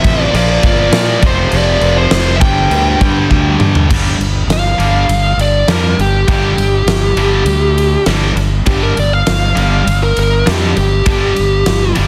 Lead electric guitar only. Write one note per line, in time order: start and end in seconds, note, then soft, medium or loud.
0.00 0.21 E5 loud
0.21 0.36 D5 loud
0.36 0.65 D5 loud
0.66 1.26 D5 loud
1.26 1.55 C5 medium
1.57 1.96 D5 loud
1.98 2.36 C5 medium
2.36 2.41 E5 medium
2.41 3.56 G5 medium
4.52 5.38 F5 medium
5.41 5.69 D5 medium
5.71 5.99 A#4 medium
6.01 6.27 G4 medium
6.28 8.04 G4 medium
8.67 8.83 G4 loud
8.83 8.97 A#4 medium
8.99 9.13 D5 medium
9.13 10.00 F5 medium
10.03 10.17 A#4 loud
10.19 10.47 A#4 medium
10.52 10.77 G4 medium
10.78 11.94 G4 medium